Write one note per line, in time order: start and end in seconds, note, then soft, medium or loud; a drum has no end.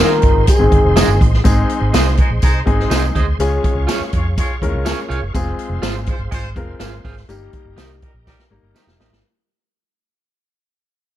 0.00 0.40 D#3 medium
0.00 0.40 G#3 medium
0.00 0.43 C4 medium
0.00 0.11 D#4 medium
0.00 0.40 D#4 medium
0.00 0.40 F4 medium
0.00 0.11 G#4 medium
0.00 1.43 G#4 medium
0.00 0.49 A#4 loud
0.00 0.11 C5 medium
0.00 1.41 C5 medium
0.00 1.43 D#5 medium
0.00 0.12 D#5 medium
0.00 0.45 A#5 medium
0.00 1.41 C6 medium
0.11 snare soft
0.22 0.32 G1 medium
0.22 kick loud
0.22 closed hi-hat medium
0.35 0.44 G#1 medium
0.47 1.17 G#4 medium
0.47 1.17 G#5 medium
0.47 kick loud
0.47 closed hi-hat loud
0.47 tambourine medium
0.58 0.69 G#1 medium
0.58 1.22 D#3 medium
0.58 1.22 G#3 medium
0.58 1.22 C4 medium
0.58 1.23 D#4 medium
0.58 1.23 G#4 medium
0.71 0.80 G1 medium
0.71 kick medium
0.71 closed hi-hat medium
0.84 1.02 F1 medium
0.96 1.08 D#4 medium
0.96 1.08 G#4 loud
0.96 1.09 C5 loud
0.96 1.09 D#5 loud
0.96 snare loud
0.96 closed hi-hat medium
0.96 tambourine loud
1.08 1.17 G1 loud
1.21 1.38 A1 medium
1.21 kick loud
1.21 closed hi-hat medium
1.34 snare soft
1.44 1.63 G#1 loud
1.44 2.16 G#3 medium
1.44 2.16 C4 medium
1.44 2.17 D#4 medium
1.44 7.25 G#4 medium
1.44 2.17 G#4 medium
1.44 3.38 C5 medium
1.44 3.38 D#5 medium
1.44 3.38 C6 medium
1.44 kick loud
1.44 closed hi-hat medium
1.44 tambourine medium
1.70 closed hi-hat medium
1.81 1.90 G#1 loud
1.93 2.20 C2 medium
1.93 2.06 D#4 medium
1.93 2.06 G#4 medium
1.93 2.06 C5 medium
1.93 2.06 D#5 medium
1.93 snare loud
1.93 closed hi-hat medium
1.93 tambourine medium
2.06 snare soft
2.17 2.28 G#3 medium
2.17 2.28 D#4 medium
2.17 2.29 C5 medium
2.17 kick loud
2.17 closed hi-hat medium
2.30 2.39 A#1 medium
2.42 2.60 C2 loud
2.42 2.59 G#3 loud
2.42 2.58 D#4 loud
2.42 2.59 C5 loud
2.42 kick loud
2.42 closed hi-hat loud
2.42 tambourine medium
2.66 2.84 G#1 medium
2.66 3.20 G#3 medium
2.66 3.20 C4 medium
2.66 3.21 D#4 medium
2.66 3.21 G#4 medium
2.66 kick medium
2.66 closed hi-hat soft
2.80 snare soft
2.90 3.08 C2 medium
2.90 3.03 D#4 medium
2.90 3.03 G#4 medium
2.90 3.03 C5 medium
2.90 3.03 D#5 medium
2.90 snare medium
2.90 closed hi-hat medium
2.90 tambourine loud
3.15 3.33 D2 medium
3.15 3.25 D#4 medium
3.15 3.25 G#4 medium
3.15 3.25 C5 medium
3.15 3.25 D#5 medium
3.15 kick medium
3.15 closed hi-hat medium
3.39 3.57 C#2 loud
3.39 4.11 G#3 medium
3.39 4.12 C#4 medium
3.39 4.12 F4 medium
3.39 4.12 G#4 loud
3.39 5.33 C#5 medium
3.39 7.26 F5 medium
3.39 5.33 C#6 medium
3.39 closed hi-hat medium
3.39 tambourine medium
3.64 kick loud
3.64 closed hi-hat medium
3.75 3.84 C#2 loud
3.87 4.00 F4 medium
3.87 4.00 G#4 medium
3.87 4.00 C#5 loud
3.87 4.01 F5 loud
3.87 snare loud
3.87 closed hi-hat loud
3.87 tambourine medium
4.00 muted fingered electric bass stroke soft
4.00 snare soft
4.13 4.39 F2 medium
4.13 4.24 G#3 medium
4.13 4.24 F4 medium
4.13 4.24 C#5 medium
4.13 kick loud
4.13 closed hi-hat medium
4.38 4.53 G#3 medium
4.38 4.53 F4 loud
4.38 4.54 C#5 loud
4.38 kick loud
4.38 closed hi-hat loud
4.38 tambourine medium
4.62 4.75 D#2 medium
4.62 5.16 G#3 medium
4.62 5.16 C#4 medium
4.62 4.68 E4 medium
4.62 5.16 A#4 loud
4.62 kick medium
4.62 closed hi-hat medium
4.69 5.19 F4 medium
4.74 4.91 C#2 medium
4.85 4.97 F4 medium
4.85 4.98 G#4 medium
4.85 4.98 C#5 loud
4.85 4.98 F5 medium
4.85 snare loud
4.85 closed hi-hat medium
4.85 tambourine loud
5.09 5.19 C2 medium
5.09 5.19 F4 medium
5.09 5.19 G#4 medium
5.09 5.19 C#5 medium
5.09 5.20 F5 medium
5.09 closed hi-hat medium
5.22 5.31 F#1 medium
5.34 5.52 F1 loud
5.34 6.06 G#3 medium
5.34 6.06 C4 medium
5.34 6.07 F4 medium
5.34 6.07 G#4 loud
5.34 7.27 C5 medium
5.34 7.28 C6 medium
5.34 kick loud
5.34 closed hi-hat medium
5.34 tambourine medium
5.59 closed hi-hat medium
5.70 5.79 F1 loud
5.82 6.09 G#1 medium
5.82 5.95 F4 medium
5.82 5.95 G#4 medium
5.82 5.95 C5 medium
5.82 5.95 F5 medium
5.82 snare loud
5.82 closed hi-hat medium
5.82 tambourine medium
6.06 6.18 G#3 medium
6.06 6.18 F4 medium
6.06 6.18 C5 loud
6.06 kick medium
6.06 closed hi-hat medium
6.19 6.28 G1 medium
6.31 6.56 G#1 medium
6.31 6.47 G#3 loud
6.31 6.47 F4 medium
6.31 6.47 C5 loud
6.31 kick loud
6.31 closed hi-hat loud
6.31 tambourine medium
6.56 6.74 F1 medium
6.56 7.10 G#3 medium
6.56 7.10 C4 medium
6.56 7.11 F4 medium
6.56 7.11 A#4 loud
6.56 kick medium
6.56 closed hi-hat soft
6.80 6.98 G#1 medium
6.80 6.92 F4 medium
6.80 6.93 G#4 medium
6.80 6.93 C5 medium
6.80 6.93 F5 medium
6.80 snare loud
6.80 closed hi-hat medium
6.80 tambourine loud
7.04 7.22 G#1 medium
7.04 7.14 F4 medium
7.04 7.14 G#4 medium
7.04 7.15 C5 medium
7.04 7.15 F5 medium
7.04 kick medium
7.04 open hi-hat soft
7.17 snare soft
7.29 7.47 G1 loud
7.29 8.01 G3 medium
7.29 8.01 A#3 medium
7.29 8.01 D#4 medium
7.29 9.23 G4 medium
7.29 8.02 G4 loud
7.29 9.23 A#4 medium
7.29 9.22 D#5 medium
7.29 9.23 A#5 medium
7.29 closed hi-hat medium
7.29 tambourine medium
7.53 kick medium
7.53 closed hi-hat medium
7.65 7.74 G1 medium
7.77 8.04 C2 medium
7.77 7.89 D#4 medium
7.77 7.90 G4 medium
7.77 7.90 A#4 medium
7.77 7.90 D#5 medium
7.77 snare loud
7.77 closed hi-hat medium
7.77 tambourine medium
8.02 8.12 G3 medium
8.02 8.13 D#4 medium
8.02 8.12 A#4 medium
8.02 kick loud
8.02 closed hi-hat medium
8.14 8.32 A#1 medium
8.27 8.42 G3 medium
8.27 8.43 D#4 medium
8.27 8.42 A#4 loud
8.27 kick loud
8.27 snare medium
8.27 tambourine medium
8.39 snare medium
8.51 8.60 G#1 medium
8.51 9.05 G3 medium
8.51 9.05 A#3 medium
8.51 9.05 D#4 medium
8.51 9.06 A#4 medium
8.63 8.72 G1 medium
8.75 8.87 D#4 medium
8.75 8.88 G4 medium
8.75 8.88 A#4 medium
8.75 8.88 D#5 medium
8.75 snare medium
8.75 tambourine loud
8.87 8.96 F1 medium
8.87 snare medium
8.99 9.08 A1 medium
8.99 9.09 D#4 medium
8.99 9.10 G4 medium
8.99 9.10 A#4 medium
8.99 9.10 D#5 medium
8.99 snare loud
9.11 9.20 G#1 medium
9.11 snare loud